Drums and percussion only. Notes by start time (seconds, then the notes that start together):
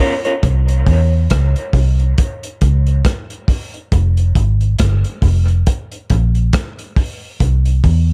0.25 closed hi-hat
0.43 kick, closed hi-hat
0.68 closed hi-hat
0.86 kick, open hi-hat
1.30 kick, cross-stick, closed hi-hat
1.56 closed hi-hat
1.73 kick, open hi-hat
1.99 closed hi-hat
2.18 kick, closed hi-hat
2.43 closed hi-hat
2.61 kick, closed hi-hat
2.86 closed hi-hat
3.05 kick, cross-stick, closed hi-hat
3.30 closed hi-hat
3.48 kick, open hi-hat
3.74 closed hi-hat
3.92 kick, closed hi-hat
4.17 closed hi-hat
4.35 kick, closed hi-hat
4.61 closed hi-hat
4.79 kick, cross-stick, closed hi-hat
5.04 closed hi-hat
5.22 kick, open hi-hat
5.48 closed hi-hat
5.67 kick, closed hi-hat
5.92 closed hi-hat
6.10 kick, closed hi-hat
6.35 closed hi-hat
6.53 kick, cross-stick, closed hi-hat
6.79 closed hi-hat
6.96 kick, open hi-hat
7.40 kick, closed hi-hat
7.65 closed hi-hat
7.84 kick, open hi-hat